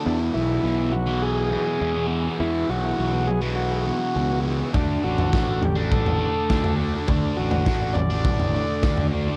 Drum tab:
SD |----------------|----------------|----o-------o---|----o-------o---|
T2 |----------------|----------------|--------o-------|--------o-------|
FT |----------------|----------------|o--o--o--o---o--|o--o--o--o---o--|
BD |----------------|----------------|o---o---o---o---|o---o---o---o---|